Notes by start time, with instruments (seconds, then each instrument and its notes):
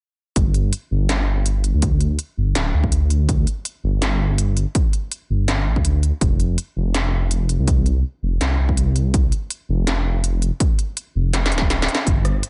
0.36 detuned saw bass G1, kick, closed hi-hat
0.54 closed hi-hat
0.73 closed hi-hat
0.91 detuned saw bass G1
1.09 snare, closed hi-hat
1.46 closed hi-hat
1.64 closed hi-hat
1.74 detuned saw bass D2
1.82 kick, closed hi-hat
2.01 closed hi-hat
2.19 closed hi-hat
2.37 detuned saw bass G1
2.55 detuned saw bass D1, snare, closed hi-hat
2.74 detuned saw bass D2
2.84 kick
2.92 closed hi-hat
3.10 closed hi-hat
3.29 kick, closed hi-hat
3.47 closed hi-hat
3.65 closed hi-hat
3.84 detuned saw bass G1
4.02 snare, closed hi-hat
4.38 closed hi-hat
4.57 closed hi-hat
4.75 kick, closed hi-hat
4.93 closed hi-hat
5.12 closed hi-hat
5.30 detuned saw bass G1
5.48 snare, closed hi-hat
5.66 detuned saw bass A1
5.76 detuned saw bass D2, kick
5.85 closed hi-hat
6.03 closed hi-hat
6.21 detuned saw bass F1, kick, closed hi-hat
6.40 closed hi-hat
6.58 closed hi-hat
6.76 detuned saw bass F1
6.94 snare, closed hi-hat
7.31 closed hi-hat
7.49 closed hi-hat
7.59 detuned saw bass C2
7.68 kick, closed hi-hat
7.86 closed hi-hat
8.22 detuned saw bass F1
8.41 detuned saw bass C2, snare, closed hi-hat
8.59 detuned saw bass C2
8.69 kick
8.77 closed hi-hat
8.96 closed hi-hat
9.14 kick, closed hi-hat
9.32 closed hi-hat
9.50 closed hi-hat
9.69 detuned saw bass F1
9.87 snare, closed hi-hat
10.24 closed hi-hat
10.42 closed hi-hat
10.60 kick, closed hi-hat
10.79 closed hi-hat
10.97 closed hi-hat
11.15 detuned saw bass F1
11.34 snare, closed hi-hat
11.46 snare
11.52 detuned saw bass D1, closed hi-hat
11.58 kick, snare
11.70 snare, closed hi-hat
11.82 snare
11.88 closed hi-hat
11.95 snare
12.07 detuned saw bass G1, kick, closed hi-hat
12.25 cross-stick, closed hi-hat
12.43 closed hi-hat